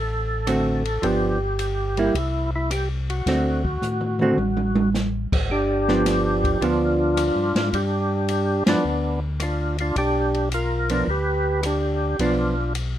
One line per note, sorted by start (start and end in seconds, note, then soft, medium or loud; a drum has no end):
0.00 0.99 A1 medium
0.00 1.07 A4 medium
0.47 0.81 D3 soft
0.47 0.82 A3 medium
0.47 0.82 C4 medium
0.47 0.82 F#4 medium
0.47 cross-stick medium
0.47 hi-hat pedal medium
0.47 ride medium
0.85 ride soft
1.02 2.10 G1 medium
1.02 1.37 F3 medium
1.02 1.37 B3 medium
1.02 1.38 D4 medium
1.02 2.18 G4 medium
1.02 kick soft
1.02 ride medium
1.59 hi-hat pedal soft
1.59 ride medium
1.97 2.13 G3 medium
1.97 2.13 A#3 medium
1.97 2.14 E4 medium
1.97 ride soft
2.15 3.22 C2 medium
2.15 2.51 E4 medium
2.15 kick soft
2.15 ride medium
2.56 2.70 E4 medium
2.71 2.89 G4 medium
2.71 cross-stick medium
2.71 hi-hat pedal medium
2.71 ride medium
3.10 4.90 F#4 medium
3.10 ride soft
3.26 3.78 D2 medium
3.26 3.61 D3 medium
3.26 3.61 A3 medium
3.26 3.61 C4 medium
3.26 3.62 F#4 medium
3.26 kick soft
3.26 snare soft
3.26 ride medium
3.65 kick medium
3.81 4.34 A2 medium
3.81 hi-hat pedal medium
3.81 mid tom soft
4.01 mid tom medium
4.19 4.36 D3 medium
4.19 4.37 A3 medium
4.19 4.37 C4 medium
4.19 4.37 F#4 medium
4.19 mid tom medium
4.37 5.28 A1 medium
4.37 high tom medium
4.57 high tom medium
4.75 high tom medium
4.94 snare medium
4.94 hi-hat pedal medium
5.32 5.48 A1 medium
5.32 kick medium
5.32 crash medium
5.50 6.57 G1 medium
5.50 6.58 D4 medium
5.50 6.65 G4 loud
5.50 kick soft
5.88 6.58 F3 medium
5.88 6.58 B3 medium
5.88 6.59 D4 medium
5.88 snare soft
6.06 snare soft
6.06 hi-hat pedal medium
6.06 ride medium
6.44 kick soft
6.44 ride soft
6.61 7.32 D2 medium
6.61 7.48 F3 medium
6.61 7.48 B3 medium
6.61 7.48 D4 medium
6.61 7.70 D4 medium
6.61 7.77 F4 medium
6.61 kick soft
6.61 ride medium
7.17 cross-stick medium
7.17 hi-hat pedal medium
7.17 ride medium
7.36 7.53 G2 medium
7.55 7.72 G#2 medium
7.55 snare medium
7.55 ride soft
7.73 8.63 G2 medium
7.73 8.64 D4 medium
7.73 8.64 G4 loud
7.73 kick soft
7.73 ride medium
8.29 hi-hat pedal medium
8.29 ride medium
8.66 8.76 G2 soft
8.66 8.83 F3 medium
8.66 8.83 B3 medium
8.66 9.20 B3 medium
8.66 8.83 D4 medium
8.66 9.20 D4 medium
8.66 snare medium
8.66 ride medium
8.84 9.92 D2 medium
9.40 9.77 D4 medium
9.40 9.77 F4 medium
9.40 cross-stick medium
9.40 hi-hat pedal medium
9.40 ride medium
9.78 9.96 D4 medium
9.78 9.96 F4 medium
9.78 ride soft
9.96 11.04 B1 medium
9.96 10.49 D4 medium
9.96 10.49 G4 medium
9.96 kick soft
9.96 ride medium
10.34 ride soft
10.52 11.05 F4 medium
10.52 11.10 A#4 medium
10.52 hi-hat pedal medium
10.52 ride medium
10.89 11.06 F3 medium
10.89 11.06 B3 medium
10.89 11.07 D4 medium
10.89 ride medium
11.07 12.15 D2 medium
11.07 11.61 G4 medium
11.07 11.66 B4 loud
11.07 kick soft
11.63 12.17 D4 medium
11.63 12.22 G4 medium
11.63 cross-stick medium
11.63 hi-hat pedal medium
11.63 ride medium
12.19 12.98 B1 medium
12.19 12.54 F3 medium
12.19 12.54 B3 medium
12.19 12.55 D4 medium
12.19 12.73 D4 medium
12.19 12.73 F4 medium
12.19 kick soft
12.19 ride medium
12.75 hi-hat pedal medium
12.75 ride medium